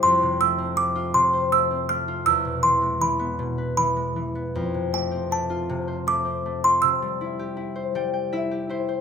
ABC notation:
X:1
M:3/4
L:1/16
Q:1/4=80
K:Flyd
V:1 name="Music box"
c'2 e'2 d'2 c'2 e'2 f'2 | e'2 c'2 b4 b3 z | z2 g2 a4 d'3 c' | e'8- e'2 z2 |]
V:2 name="Harp"
z12 | z12 | z12 | z6 g2 e2 c2 |]
V:3 name="Harp"
F,, C, A, C A, F C, c A, C A, F | E,, B,, E, ^G, E, B, B,, B E, G, E, B, | F,, C, A, C A, F C, c A, C A, F | C, G, E G E c G, g E G E c |]